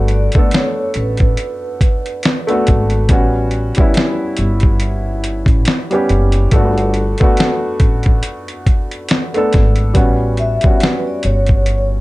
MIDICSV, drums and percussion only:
0, 0, Header, 1, 2, 480
1, 0, Start_track
1, 0, Tempo, 857143
1, 1731, Time_signature, 4, 2, 24, 8
1, 6724, End_track
2, 0, Start_track
2, 0, Title_t, "Drums"
2, 47, Note_on_c, 9, 42, 54
2, 103, Note_off_c, 9, 42, 0
2, 178, Note_on_c, 9, 42, 51
2, 196, Note_on_c, 9, 36, 88
2, 234, Note_off_c, 9, 42, 0
2, 252, Note_off_c, 9, 36, 0
2, 287, Note_on_c, 9, 42, 75
2, 305, Note_on_c, 9, 38, 115
2, 343, Note_off_c, 9, 42, 0
2, 361, Note_off_c, 9, 38, 0
2, 526, Note_on_c, 9, 42, 67
2, 582, Note_off_c, 9, 42, 0
2, 658, Note_on_c, 9, 42, 49
2, 673, Note_on_c, 9, 36, 78
2, 714, Note_off_c, 9, 42, 0
2, 729, Note_off_c, 9, 36, 0
2, 769, Note_on_c, 9, 42, 76
2, 825, Note_off_c, 9, 42, 0
2, 1012, Note_on_c, 9, 36, 86
2, 1015, Note_on_c, 9, 42, 68
2, 1068, Note_off_c, 9, 36, 0
2, 1071, Note_off_c, 9, 42, 0
2, 1152, Note_on_c, 9, 42, 45
2, 1208, Note_off_c, 9, 42, 0
2, 1249, Note_on_c, 9, 42, 80
2, 1263, Note_on_c, 9, 38, 116
2, 1305, Note_off_c, 9, 42, 0
2, 1319, Note_off_c, 9, 38, 0
2, 1392, Note_on_c, 9, 42, 35
2, 1448, Note_off_c, 9, 42, 0
2, 1494, Note_on_c, 9, 42, 58
2, 1502, Note_on_c, 9, 36, 85
2, 1550, Note_off_c, 9, 42, 0
2, 1558, Note_off_c, 9, 36, 0
2, 1623, Note_on_c, 9, 42, 47
2, 1679, Note_off_c, 9, 42, 0
2, 1729, Note_on_c, 9, 42, 76
2, 1731, Note_on_c, 9, 36, 101
2, 1785, Note_off_c, 9, 42, 0
2, 1787, Note_off_c, 9, 36, 0
2, 1965, Note_on_c, 9, 42, 52
2, 2021, Note_off_c, 9, 42, 0
2, 2098, Note_on_c, 9, 42, 51
2, 2117, Note_on_c, 9, 36, 94
2, 2154, Note_off_c, 9, 42, 0
2, 2173, Note_off_c, 9, 36, 0
2, 2207, Note_on_c, 9, 42, 72
2, 2225, Note_on_c, 9, 38, 118
2, 2263, Note_off_c, 9, 42, 0
2, 2281, Note_off_c, 9, 38, 0
2, 2445, Note_on_c, 9, 42, 63
2, 2501, Note_off_c, 9, 42, 0
2, 2576, Note_on_c, 9, 42, 46
2, 2593, Note_on_c, 9, 36, 78
2, 2632, Note_off_c, 9, 42, 0
2, 2649, Note_off_c, 9, 36, 0
2, 2686, Note_on_c, 9, 42, 80
2, 2742, Note_off_c, 9, 42, 0
2, 2933, Note_on_c, 9, 42, 64
2, 2989, Note_off_c, 9, 42, 0
2, 3058, Note_on_c, 9, 36, 90
2, 3068, Note_on_c, 9, 42, 46
2, 3114, Note_off_c, 9, 36, 0
2, 3124, Note_off_c, 9, 42, 0
2, 3165, Note_on_c, 9, 42, 81
2, 3179, Note_on_c, 9, 38, 121
2, 3221, Note_off_c, 9, 42, 0
2, 3235, Note_off_c, 9, 38, 0
2, 3309, Note_on_c, 9, 42, 35
2, 3365, Note_off_c, 9, 42, 0
2, 3412, Note_on_c, 9, 42, 55
2, 3468, Note_off_c, 9, 42, 0
2, 3540, Note_on_c, 9, 42, 50
2, 3596, Note_off_c, 9, 42, 0
2, 3648, Note_on_c, 9, 42, 83
2, 3650, Note_on_c, 9, 36, 97
2, 3704, Note_off_c, 9, 42, 0
2, 3706, Note_off_c, 9, 36, 0
2, 3794, Note_on_c, 9, 42, 37
2, 3850, Note_off_c, 9, 42, 0
2, 3885, Note_on_c, 9, 42, 53
2, 3941, Note_off_c, 9, 42, 0
2, 4019, Note_on_c, 9, 42, 51
2, 4037, Note_on_c, 9, 36, 93
2, 4075, Note_off_c, 9, 42, 0
2, 4093, Note_off_c, 9, 36, 0
2, 4128, Note_on_c, 9, 42, 78
2, 4145, Note_on_c, 9, 38, 120
2, 4184, Note_off_c, 9, 42, 0
2, 4201, Note_off_c, 9, 38, 0
2, 4366, Note_on_c, 9, 42, 65
2, 4367, Note_on_c, 9, 36, 90
2, 4422, Note_off_c, 9, 42, 0
2, 4423, Note_off_c, 9, 36, 0
2, 4497, Note_on_c, 9, 42, 47
2, 4514, Note_on_c, 9, 36, 73
2, 4553, Note_off_c, 9, 42, 0
2, 4570, Note_off_c, 9, 36, 0
2, 4607, Note_on_c, 9, 42, 80
2, 4663, Note_off_c, 9, 42, 0
2, 4750, Note_on_c, 9, 42, 34
2, 4806, Note_off_c, 9, 42, 0
2, 4852, Note_on_c, 9, 36, 84
2, 4853, Note_on_c, 9, 42, 69
2, 4908, Note_off_c, 9, 36, 0
2, 4909, Note_off_c, 9, 42, 0
2, 4992, Note_on_c, 9, 42, 41
2, 5048, Note_off_c, 9, 42, 0
2, 5088, Note_on_c, 9, 42, 79
2, 5102, Note_on_c, 9, 38, 115
2, 5144, Note_off_c, 9, 42, 0
2, 5158, Note_off_c, 9, 38, 0
2, 5232, Note_on_c, 9, 42, 33
2, 5288, Note_off_c, 9, 42, 0
2, 5335, Note_on_c, 9, 42, 54
2, 5343, Note_on_c, 9, 36, 89
2, 5348, Note_on_c, 9, 38, 34
2, 5391, Note_off_c, 9, 42, 0
2, 5399, Note_off_c, 9, 36, 0
2, 5404, Note_off_c, 9, 38, 0
2, 5464, Note_on_c, 9, 42, 51
2, 5520, Note_off_c, 9, 42, 0
2, 5571, Note_on_c, 9, 42, 73
2, 5572, Note_on_c, 9, 36, 98
2, 5627, Note_off_c, 9, 42, 0
2, 5628, Note_off_c, 9, 36, 0
2, 5809, Note_on_c, 9, 42, 50
2, 5865, Note_off_c, 9, 42, 0
2, 5942, Note_on_c, 9, 42, 47
2, 5959, Note_on_c, 9, 36, 92
2, 5998, Note_off_c, 9, 42, 0
2, 6015, Note_off_c, 9, 36, 0
2, 6050, Note_on_c, 9, 42, 76
2, 6067, Note_on_c, 9, 38, 114
2, 6106, Note_off_c, 9, 42, 0
2, 6123, Note_off_c, 9, 38, 0
2, 6288, Note_on_c, 9, 42, 64
2, 6344, Note_off_c, 9, 42, 0
2, 6421, Note_on_c, 9, 42, 45
2, 6436, Note_on_c, 9, 36, 79
2, 6477, Note_off_c, 9, 42, 0
2, 6492, Note_off_c, 9, 36, 0
2, 6530, Note_on_c, 9, 42, 78
2, 6586, Note_off_c, 9, 42, 0
2, 6724, End_track
0, 0, End_of_file